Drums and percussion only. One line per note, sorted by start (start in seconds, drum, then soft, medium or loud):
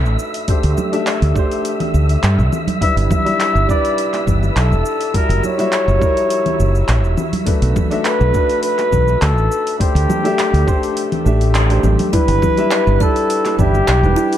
0.06 shaker soft
0.19 shaker medium
0.34 open hi-hat soft
0.34 shaker soft
0.48 kick loud
0.48 open hi-hat medium
0.48 shaker soft
0.63 open hi-hat soft
0.63 shaker soft
0.77 high bongo medium
0.77 high conga medium
0.77 shaker medium
0.93 open hi-hat soft
0.93 high bongo medium
0.93 shaker soft
1.07 clap loud
1.07 open hi-hat medium
1.07 shaker soft
1.22 open hi-hat soft
1.22 shaker soft
1.36 kick loud
1.36 shaker medium
1.51 open hi-hat soft
1.51 shaker soft
1.65 open hi-hat medium
1.65 shaker soft
1.80 open hi-hat soft
1.80 low conga medium
1.80 shaker soft
1.94 shaker medium
2.09 open hi-hat soft
2.09 shaker soft
2.23 clap medium
2.23 open hi-hat medium
2.23 shaker soft
2.39 shaker soft
2.53 low conga medium
2.53 shaker medium
2.68 open hi-hat soft
2.68 high conga loud
2.68 shaker soft
2.81 kick loud
2.81 open hi-hat medium
2.81 shaker soft
2.97 open hi-hat soft
2.97 shaker soft
3.11 kick loud
3.11 high bongo soft
3.11 high conga medium
3.11 low conga medium
3.11 shaker medium
3.26 open hi-hat soft
3.26 high bongo medium
3.26 shaker soft
3.40 clap medium
3.40 open hi-hat medium
3.40 shaker soft
3.56 shaker soft
3.69 kick loud
3.69 shaker medium
3.85 open hi-hat soft
3.85 shaker soft
3.98 open hi-hat medium
3.98 shaker soft
4.14 clap soft
4.14 open hi-hat soft
4.14 high bongo medium
4.14 shaker soft
4.27 kick medium
4.27 low conga medium
4.27 shaker medium
4.43 high bongo soft
4.43 shaker soft
4.57 clap medium
4.57 open hi-hat medium
4.57 shaker soft
4.72 shaker soft
4.86 shaker medium
5.01 open hi-hat soft
5.01 shaker soft
5.14 kick loud
5.14 open hi-hat medium
5.14 shaker soft
5.30 open hi-hat soft
5.30 shaker soft
5.43 high bongo medium
5.43 high conga medium
5.43 shaker medium
5.59 open hi-hat soft
5.59 high bongo medium
5.59 shaker soft
5.72 clap medium
5.72 open hi-hat medium
5.72 shaker soft
5.88 shaker soft
6.02 kick loud
6.02 shaker medium
6.17 open hi-hat soft
6.17 shaker soft
6.30 open hi-hat medium
6.30 shaker soft
6.46 open hi-hat soft
6.46 low conga medium
6.46 shaker soft
6.60 shaker medium
6.75 shaker soft
6.88 clap medium
6.88 open hi-hat medium
6.88 shaker soft
7.04 shaker soft
7.17 low conga medium
7.17 shaker medium
7.33 open hi-hat soft
7.33 high conga medium
7.33 shaker soft
7.47 kick loud
7.47 open hi-hat medium
7.47 shaker soft
7.62 open hi-hat soft
7.62 shaker soft
7.76 kick loud
7.76 high bongo medium
7.76 high conga medium
7.76 low conga medium
7.76 shaker medium
7.91 open hi-hat soft
7.91 high bongo medium
7.91 shaker soft
8.05 clap medium
8.05 open hi-hat medium
8.05 shaker soft
8.21 shaker soft
8.34 kick loud
8.34 shaker medium
8.49 open hi-hat soft
8.49 shaker soft
8.63 open hi-hat medium
8.63 shaker soft
8.79 clap soft
8.79 open hi-hat soft
8.79 high bongo medium
8.79 shaker soft
8.92 kick medium
8.92 low conga medium
8.92 shaker medium
9.08 high bongo soft
9.08 shaker soft
9.22 clap medium
9.22 open hi-hat medium
9.22 shaker soft
9.38 shaker soft
9.52 shaker medium
9.67 open hi-hat soft
9.67 shaker soft
9.80 kick loud
9.80 open hi-hat medium
9.80 shaker soft
9.96 open hi-hat soft
9.96 shaker soft
10.09 high bongo medium
10.09 high conga medium
10.09 low conga medium
10.09 shaker medium
10.25 open hi-hat soft
10.25 high bongo medium
10.25 shaker soft
10.39 clap loud
10.39 open hi-hat medium
10.39 shaker soft
10.54 open hi-hat soft
10.54 shaker soft
10.68 kick loud
10.68 shaker medium
10.83 open hi-hat soft
10.83 shaker soft
10.97 open hi-hat medium
10.97 shaker soft
11.12 open hi-hat soft
11.12 low conga medium
11.12 shaker soft
11.26 shaker medium
11.41 open hi-hat soft
11.41 shaker soft
11.55 clap loud
11.55 open hi-hat medium
11.55 shaker soft
11.70 open hi-hat soft
11.70 shaker soft
11.83 high conga medium
11.83 low conga medium
11.83 shaker medium
11.99 open hi-hat soft
11.99 high conga medium
11.99 shaker soft
12.13 kick loud
12.13 open hi-hat medium
12.13 shaker soft
12.28 open hi-hat soft
12.28 shaker soft
12.42 kick loud
12.42 high bongo medium
12.42 high conga medium
12.42 low conga medium
12.42 shaker medium
12.57 open hi-hat soft
12.57 high bongo medium
12.57 shaker soft
12.71 clap loud
12.71 open hi-hat medium
12.71 shaker soft
12.87 shaker soft
13.00 kick loud
13.00 shaker medium
13.16 open hi-hat soft
13.16 shaker soft
13.30 open hi-hat medium
13.30 shaker soft
13.45 clap soft
13.45 open hi-hat soft
13.45 high bongo medium
13.45 shaker soft
13.59 kick medium
13.59 low conga medium
13.59 shaker medium
13.74 high bongo medium
13.74 shaker soft
13.88 clap loud
13.88 open hi-hat medium
13.88 shaker soft
14.04 shaker soft
14.17 shaker medium
14.33 open hi-hat soft
14.33 shaker soft